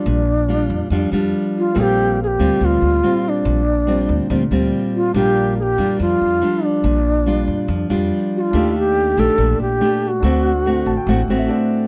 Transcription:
Already playing: nylon-string guitar G3 D4 F4, bansuri D4, grand piano D4 G4 A#4 F5
0.06 upright bass A#1, nylon-string guitar A#2
0.48 nylon-string guitar G3 D4 F4
0.70 upright bass F2
0.90 upright bass F2, nylon-string guitar F3 G3 D4 F4
1.12 upright bass F2, nylon-string guitar G3 D4 F4
1.58 bansuri F4
1.74 upright bass A#1, nylon-string guitar A#2 G3 C4 F4, grand piano C4 A4 A#4
1.79 bansuri G4 G#4, grand piano F5
2.23 bansuri G4 G#4
2.39 upright bass D2, nylon-string guitar G3 C4 F4
2.61 upright bass D2, nylon-string guitar A#2
2.65 bansuri F4
2.82 upright bass D2
3.03 nylon-string guitar G3 C4 F4
3.29 bansuri D4
3.45 upright bass A#1, nylon-string guitar A#2
3.87 nylon-string guitar G3 C4 F4
4.09 upright bass D2
4.30 upright bass D2, nylon-string guitar A#2 G3 C4 F4
4.51 upright bass D2, nylon-string guitar G3 C4 F4
4.96 bansuri F4
5.13 upright bass A#1, nylon-string guitar A#2 G3 D4 F4, grand piano D4 G4 A#4, bansuri G4
5.19 grand piano F5
5.59 bansuri G4 G#4
5.78 upright bass F2, nylon-string guitar G3 D4 F4
6.00 upright bass F2, nylon-string guitar F3, bansuri F4
6.21 upright bass F2
6.42 nylon-string guitar G3 D4 F4
6.65 bansuri D4
6.84 upright bass A#1, nylon-string guitar A#2
7.26 nylon-string guitar G3 D4 F4
7.48 upright bass F2
7.68 upright bass F2, nylon-string guitar F3
7.90 upright bass F2, nylon-string guitar G3 D4 F4
8.37 bansuri F4 F#4
8.51 upright bass D#2, nylon-string guitar D#3 A3 D4, grand piano D4 G4
8.55 nylon-string guitar G4, grand piano A4 F5
8.79 bansuri G4
9.17 upright bass A#1, nylon-string guitar A3 D4 G4, bansuri A4
9.38 upright bass A#1, nylon-string guitar A#2
9.60 upright bass A#1, bansuri G4
9.81 nylon-string guitar A3 D4 G4
10.03 bansuri G4
10.08 bansuri F#4
10.20 upright bass D2, nylon-string guitar D3 A3, grand piano D4 A4
10.24 nylon-string guitar C4 F#4, grand piano C5 F#5
10.66 nylon-string guitar A3 C4 F#4
10.86 upright bass A1, grand piano A5
10.97 grand piano G5
11.07 upright bass A1, nylon-string guitar A2 A3 C4 F#4, grand piano F#5
11.28 upright bass A1, nylon-string guitar A3 C4 F#4
11.39 grand piano E5
11.48 grand piano D4 A4 C5 D5 F#5

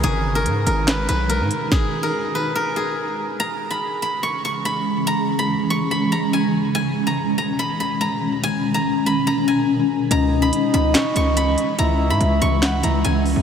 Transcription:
Already playing: guzheng A#4 C#5
0.04 808-style bass G#1, ambient pad B2 D#3 G#3 D#4, guzheng G#4, closed hi-hat
0.35 guzheng A#4
0.46 808-style bass G#2, closed hi-hat
0.66 808-style bass G#1, guzheng A#4, closed hi-hat
0.88 guzheng B4, snare, clap, closed hi-hat
1.09 808-style bass B1, guzheng B4, closed hi-hat
1.29 guzheng A#4, closed hi-hat
1.40 808-style bass G#2
1.51 closed hi-hat
1.72 guzheng G#4, kick, snare
2.03 guzheng A#4
2.35 guzheng B4
2.55 guzheng A#4
2.76 guzheng G#4
3.39 ambient pad C#3 E3 G#3 C#4, guzheng A#5
3.70 guzheng B5
4.02 guzheng B5
4.23 guzheng C#6
4.45 guzheng C#6
4.65 guzheng B5
5.07 guzheng A#5
5.39 guzheng B5
5.70 guzheng C#6
5.91 guzheng B5
6.12 guzheng A#5
6.33 guzheng G#5
6.75 ambient pad B2 D#3, guzheng G#5
7.07 guzheng A#5
7.38 guzheng A#5
7.59 guzheng B5
7.80 guzheng B5
8.01 guzheng A#5
8.43 guzheng G#5
8.74 guzheng A#5
9.06 guzheng B5
9.27 guzheng A#5
9.48 guzheng G#5
10.11 808-style bass C#2, ambient pad C#3 E3 G#3, soft synth lead D#5, guzheng A#5, closed hi-hat
10.42 guzheng B5
10.53 closed hi-hat
10.74 808-style bass C#2, guzheng B5, closed hi-hat
10.94 guzheng C#6, snare, clap, closed hi-hat
11.16 808-style bass C#2, guzheng C#6, closed hi-hat
11.37 guzheng B5, closed hi-hat
11.58 closed hi-hat
11.78 808-style bass C#2, soft synth lead E5, guzheng A#5, closed hi-hat
12.10 808-style bass G#2, guzheng B5
12.21 808-style bass C#2, closed hi-hat
12.42 808-style bass C#2, guzheng C#6, closed hi-hat
12.62 soft synth lead F#5, guzheng B5, snare, clap, closed hi-hat
12.83 808-style bass C#2, soft synth lead E5, guzheng A#5, closed hi-hat
13.05 808-style bass C#2, guzheng G#5, closed hi-hat
13.26 open hi-hat
13.36 808-style bass C#2

